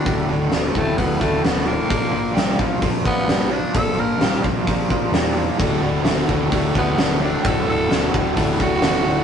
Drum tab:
HH |o-o-o-o-|o-o-o-o-|o-o-o-o-|o-o-o-o-|
SD |--o--oo-|--o---o-|--o---o-|--o---o-|
BD |o--ooo--|o--ooo--|o--ooo--|o--ooo--|

HH |o-o-o-o-|
SD |--o---o-|
BD |o--ooo--|